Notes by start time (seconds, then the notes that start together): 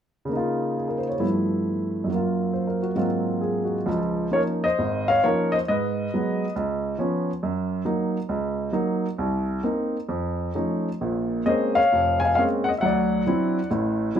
0.25 C#3 A#3
0.33 D#4 F4
0.77 G#4
0.88 A#4
0.98 C5
1.09 C#5
1.19 G2 F3 A3 B3 E4
2.04 F#2 F#3
2.12 A#3 F4
2.53 C5
2.67 A#4
2.82 F#4
2.95 G#2 F#3 A#3 C4 F4
3.41 G#4
3.64 F#4
3.86 C#2 F3
4.31 F3 A#3 C#4 D#4 C#5
4.35 A#4
4.64 C5 D#5
4.79 G#1
5.08 C#5 F5
5.24 F3 A#3 C#4 D#4 A#4 C#5
5.52 C5 D#5
5.68 G#2 B4 D#5
6.14 F#3 G#3 B3
6.56 C#2
6.98 F3 B3 C#4
7.43 F#2
7.85 F#3 A#3 D#4
8.29 C#2
8.73 F#3 A#3 D#4
9.18 C2
9.64 A#3 C4 D#4
10.09 F2
10.55 F3 A3 C#4 D#4
11.01 A#1 A#2
11.45 G#3 A#3 C4 C#4 C5 D#5
11.75 C#5 F5
11.93 F1
12.20 G#5
12.25 F5
12.35 G#3 A#3 C4 C#4 F5
12.40 C#5
12.64 F#5
12.69 D#5
12.78 E5 F#5
12.82 D2 F#3 D5
13.27 F#3 C4 D4 E4
13.71 A1 A2
14.15 F#3 C4 D4 E4